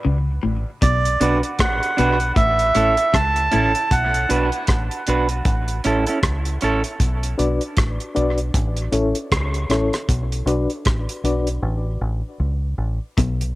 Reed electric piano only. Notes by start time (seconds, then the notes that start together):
7.38 D4 F#4 B4 D5
8.15 D4 F#4 B4 D5
8.92 C#4 E4 A4 C#5
9.70 C#4 E4 A4 C#5
10.47 D4 F#4 B4 D5
11.24 D4 F#4 B4 D5